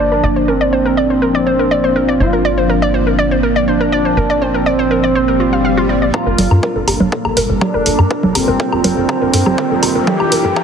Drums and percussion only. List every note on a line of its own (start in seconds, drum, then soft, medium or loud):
6.14 kick loud
6.14 low woodblock soft
6.38 open hi-hat loud
6.38 low conga medium
6.51 low woodblock soft
6.63 kick loud
6.88 open hi-hat medium
6.88 low woodblock medium
7.00 low conga medium
7.12 kick loud
7.25 low woodblock soft
7.37 open hi-hat loud
7.61 kick loud
7.61 low conga medium
7.61 low woodblock soft
7.86 open hi-hat medium
7.99 low woodblock medium
8.11 kick loud
8.23 low conga medium
8.35 open hi-hat loud
8.35 low woodblock soft
8.60 kick loud
8.72 low woodblock soft
8.84 open hi-hat medium
8.84 low conga medium
9.09 kick loud
9.09 low woodblock soft
9.33 open hi-hat loud
9.46 low conga medium
9.46 low woodblock soft
9.58 kick loud
9.83 open hi-hat medium
9.83 low woodblock soft
10.07 kick loud
10.07 low conga medium
10.20 low woodblock soft
10.32 open hi-hat loud
10.56 kick loud
10.56 low woodblock soft